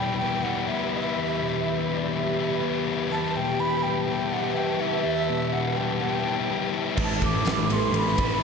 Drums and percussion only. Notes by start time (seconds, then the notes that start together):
6.97 kick, crash
7.22 kick, ride
7.45 snare, ride, tambourine
7.70 ride
7.94 ride
8.18 kick, ride